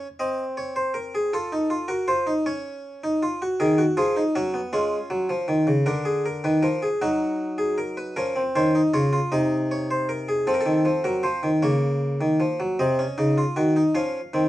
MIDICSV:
0, 0, Header, 1, 2, 480
1, 0, Start_track
1, 0, Key_signature, -6, "minor"
1, 0, Tempo, 756620
1, 845, Time_signature, 6, 3, 24, 8
1, 4690, Tempo, 772201
1, 9100, End_track
2, 0, Start_track
2, 0, Title_t, "Harpsichord"
2, 0, Program_c, 0, 6
2, 123, Note_on_c, 0, 75, 82
2, 125, Note_on_c, 0, 60, 64
2, 272, Note_off_c, 0, 75, 0
2, 364, Note_on_c, 0, 73, 80
2, 481, Note_off_c, 0, 73, 0
2, 482, Note_on_c, 0, 72, 79
2, 597, Note_on_c, 0, 70, 76
2, 600, Note_off_c, 0, 72, 0
2, 717, Note_off_c, 0, 70, 0
2, 727, Note_on_c, 0, 68, 81
2, 822, Note_off_c, 0, 60, 0
2, 842, Note_off_c, 0, 68, 0
2, 846, Note_on_c, 0, 69, 86
2, 847, Note_on_c, 0, 65, 67
2, 962, Note_off_c, 0, 65, 0
2, 967, Note_on_c, 0, 63, 63
2, 1080, Note_on_c, 0, 65, 64
2, 1081, Note_off_c, 0, 63, 0
2, 1193, Note_off_c, 0, 69, 0
2, 1194, Note_on_c, 0, 66, 68
2, 1195, Note_on_c, 0, 70, 81
2, 1198, Note_off_c, 0, 65, 0
2, 1314, Note_off_c, 0, 66, 0
2, 1315, Note_off_c, 0, 70, 0
2, 1318, Note_on_c, 0, 65, 65
2, 1318, Note_on_c, 0, 72, 74
2, 1436, Note_off_c, 0, 65, 0
2, 1438, Note_on_c, 0, 63, 67
2, 1468, Note_off_c, 0, 72, 0
2, 1557, Note_off_c, 0, 63, 0
2, 1562, Note_on_c, 0, 61, 63
2, 1562, Note_on_c, 0, 73, 82
2, 1913, Note_off_c, 0, 61, 0
2, 1926, Note_on_c, 0, 63, 68
2, 2041, Note_off_c, 0, 63, 0
2, 2047, Note_on_c, 0, 65, 70
2, 2161, Note_off_c, 0, 65, 0
2, 2170, Note_on_c, 0, 66, 72
2, 2261, Note_off_c, 0, 73, 0
2, 2283, Note_off_c, 0, 66, 0
2, 2283, Note_on_c, 0, 70, 74
2, 2284, Note_on_c, 0, 68, 78
2, 2285, Note_on_c, 0, 51, 92
2, 2399, Note_off_c, 0, 68, 0
2, 2399, Note_on_c, 0, 66, 72
2, 2431, Note_off_c, 0, 70, 0
2, 2433, Note_off_c, 0, 51, 0
2, 2517, Note_off_c, 0, 66, 0
2, 2520, Note_on_c, 0, 53, 85
2, 2520, Note_on_c, 0, 65, 68
2, 2520, Note_on_c, 0, 68, 68
2, 2637, Note_off_c, 0, 65, 0
2, 2642, Note_on_c, 0, 63, 76
2, 2669, Note_off_c, 0, 53, 0
2, 2669, Note_off_c, 0, 68, 0
2, 2758, Note_off_c, 0, 63, 0
2, 2762, Note_on_c, 0, 61, 67
2, 2764, Note_on_c, 0, 54, 82
2, 2764, Note_on_c, 0, 66, 65
2, 2877, Note_off_c, 0, 61, 0
2, 2880, Note_on_c, 0, 59, 66
2, 2911, Note_off_c, 0, 54, 0
2, 2911, Note_off_c, 0, 66, 0
2, 2995, Note_off_c, 0, 59, 0
2, 3000, Note_on_c, 0, 56, 88
2, 3000, Note_on_c, 0, 65, 68
2, 3001, Note_on_c, 0, 61, 70
2, 3148, Note_off_c, 0, 56, 0
2, 3237, Note_on_c, 0, 54, 88
2, 3354, Note_off_c, 0, 54, 0
2, 3359, Note_on_c, 0, 53, 88
2, 3475, Note_off_c, 0, 53, 0
2, 3477, Note_on_c, 0, 51, 86
2, 3595, Note_off_c, 0, 51, 0
2, 3598, Note_on_c, 0, 49, 82
2, 3700, Note_off_c, 0, 65, 0
2, 3701, Note_off_c, 0, 61, 0
2, 3717, Note_off_c, 0, 49, 0
2, 3718, Note_on_c, 0, 70, 75
2, 3720, Note_on_c, 0, 50, 91
2, 3721, Note_on_c, 0, 62, 79
2, 3838, Note_off_c, 0, 70, 0
2, 3840, Note_on_c, 0, 68, 67
2, 3960, Note_off_c, 0, 68, 0
2, 3969, Note_on_c, 0, 70, 73
2, 4075, Note_off_c, 0, 50, 0
2, 4085, Note_off_c, 0, 70, 0
2, 4086, Note_on_c, 0, 51, 90
2, 4088, Note_on_c, 0, 71, 67
2, 4203, Note_on_c, 0, 53, 81
2, 4204, Note_off_c, 0, 51, 0
2, 4204, Note_off_c, 0, 71, 0
2, 4204, Note_on_c, 0, 70, 65
2, 4323, Note_off_c, 0, 70, 0
2, 4329, Note_on_c, 0, 68, 67
2, 4354, Note_off_c, 0, 53, 0
2, 4426, Note_off_c, 0, 62, 0
2, 4445, Note_off_c, 0, 68, 0
2, 4451, Note_on_c, 0, 54, 93
2, 4452, Note_on_c, 0, 63, 75
2, 4452, Note_on_c, 0, 66, 70
2, 4798, Note_off_c, 0, 66, 0
2, 4807, Note_on_c, 0, 68, 73
2, 4923, Note_off_c, 0, 68, 0
2, 4930, Note_on_c, 0, 70, 72
2, 5044, Note_off_c, 0, 70, 0
2, 5050, Note_on_c, 0, 71, 76
2, 5146, Note_off_c, 0, 54, 0
2, 5146, Note_off_c, 0, 63, 0
2, 5165, Note_off_c, 0, 71, 0
2, 5169, Note_on_c, 0, 70, 87
2, 5171, Note_on_c, 0, 53, 76
2, 5171, Note_on_c, 0, 61, 74
2, 5285, Note_off_c, 0, 61, 0
2, 5290, Note_on_c, 0, 60, 70
2, 5317, Note_off_c, 0, 70, 0
2, 5319, Note_off_c, 0, 53, 0
2, 5405, Note_off_c, 0, 60, 0
2, 5413, Note_on_c, 0, 51, 69
2, 5413, Note_on_c, 0, 61, 68
2, 5413, Note_on_c, 0, 72, 87
2, 5526, Note_off_c, 0, 61, 0
2, 5535, Note_on_c, 0, 63, 76
2, 5560, Note_off_c, 0, 51, 0
2, 5560, Note_off_c, 0, 72, 0
2, 5647, Note_off_c, 0, 63, 0
2, 5649, Note_on_c, 0, 49, 69
2, 5649, Note_on_c, 0, 65, 67
2, 5650, Note_on_c, 0, 73, 75
2, 5761, Note_off_c, 0, 65, 0
2, 5768, Note_on_c, 0, 65, 66
2, 5797, Note_off_c, 0, 49, 0
2, 5797, Note_off_c, 0, 73, 0
2, 5883, Note_off_c, 0, 65, 0
2, 5887, Note_on_c, 0, 75, 85
2, 5888, Note_on_c, 0, 48, 71
2, 5888, Note_on_c, 0, 63, 70
2, 6034, Note_off_c, 0, 75, 0
2, 6133, Note_on_c, 0, 73, 83
2, 6244, Note_off_c, 0, 73, 0
2, 6252, Note_on_c, 0, 72, 82
2, 6364, Note_off_c, 0, 72, 0
2, 6367, Note_on_c, 0, 70, 85
2, 6481, Note_off_c, 0, 70, 0
2, 6488, Note_on_c, 0, 68, 81
2, 6582, Note_off_c, 0, 48, 0
2, 6582, Note_off_c, 0, 63, 0
2, 6601, Note_off_c, 0, 68, 0
2, 6604, Note_on_c, 0, 53, 74
2, 6604, Note_on_c, 0, 69, 81
2, 6605, Note_on_c, 0, 60, 78
2, 6645, Note_off_c, 0, 69, 0
2, 6647, Note_on_c, 0, 70, 76
2, 6687, Note_on_c, 0, 69, 90
2, 6690, Note_off_c, 0, 70, 0
2, 6719, Note_off_c, 0, 53, 0
2, 6719, Note_on_c, 0, 51, 69
2, 6836, Note_off_c, 0, 51, 0
2, 6840, Note_on_c, 0, 53, 71
2, 6951, Note_off_c, 0, 69, 0
2, 6957, Note_off_c, 0, 53, 0
2, 6959, Note_on_c, 0, 54, 70
2, 6959, Note_on_c, 0, 70, 83
2, 7076, Note_off_c, 0, 54, 0
2, 7076, Note_off_c, 0, 70, 0
2, 7077, Note_on_c, 0, 53, 68
2, 7077, Note_on_c, 0, 72, 76
2, 7195, Note_off_c, 0, 53, 0
2, 7201, Note_on_c, 0, 51, 66
2, 7227, Note_off_c, 0, 72, 0
2, 7300, Note_off_c, 0, 60, 0
2, 7317, Note_off_c, 0, 51, 0
2, 7321, Note_on_c, 0, 49, 68
2, 7321, Note_on_c, 0, 73, 79
2, 7323, Note_on_c, 0, 58, 70
2, 7671, Note_off_c, 0, 49, 0
2, 7683, Note_on_c, 0, 51, 68
2, 7800, Note_off_c, 0, 51, 0
2, 7802, Note_on_c, 0, 53, 68
2, 7920, Note_off_c, 0, 53, 0
2, 7926, Note_on_c, 0, 54, 67
2, 8025, Note_off_c, 0, 73, 0
2, 8026, Note_off_c, 0, 58, 0
2, 8043, Note_off_c, 0, 54, 0
2, 8048, Note_on_c, 0, 48, 68
2, 8048, Note_on_c, 0, 60, 59
2, 8048, Note_on_c, 0, 75, 64
2, 8165, Note_off_c, 0, 60, 0
2, 8170, Note_on_c, 0, 61, 57
2, 8198, Note_off_c, 0, 48, 0
2, 8286, Note_on_c, 0, 63, 57
2, 8287, Note_off_c, 0, 61, 0
2, 8288, Note_on_c, 0, 49, 62
2, 8405, Note_off_c, 0, 63, 0
2, 8409, Note_on_c, 0, 65, 63
2, 8438, Note_off_c, 0, 49, 0
2, 8526, Note_off_c, 0, 65, 0
2, 8526, Note_on_c, 0, 51, 67
2, 8527, Note_on_c, 0, 66, 55
2, 8645, Note_off_c, 0, 66, 0
2, 8650, Note_on_c, 0, 63, 58
2, 8675, Note_off_c, 0, 51, 0
2, 8749, Note_off_c, 0, 75, 0
2, 8764, Note_on_c, 0, 53, 69
2, 8765, Note_on_c, 0, 61, 59
2, 8766, Note_off_c, 0, 63, 0
2, 8766, Note_on_c, 0, 77, 61
2, 8913, Note_off_c, 0, 53, 0
2, 8914, Note_off_c, 0, 61, 0
2, 9005, Note_on_c, 0, 51, 66
2, 9007, Note_on_c, 0, 60, 55
2, 9100, Note_off_c, 0, 51, 0
2, 9100, Note_off_c, 0, 60, 0
2, 9100, Note_off_c, 0, 77, 0
2, 9100, End_track
0, 0, End_of_file